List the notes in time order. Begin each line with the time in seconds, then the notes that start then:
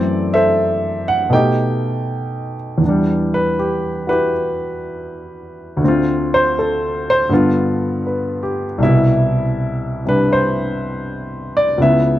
Already playing: F#2 E3 A3 C4 A4 D5
0.34 A4 C5 E5
1.08 F#5
1.30 B2 A3 D#4 G5
1.35 G4 D#5
2.78 E2 E3
2.85 G3 D4
3.34 B4
3.59 G4
4.07 E4 F#4 G4 B4
5.77 D2
5.81 D3 C4
5.88 F4
6.34 C5
6.59 A4
7.10 C5
7.29 G2 D3 B3
7.34 F4
8.06 B4
8.43 G4
8.78 C2 B2 C3
8.83 E4 E5
10.05 C3 G3 D4 B4
10.33 C5
11.57 D5
11.78 C#2 C#3 B3
11.82 E4 E5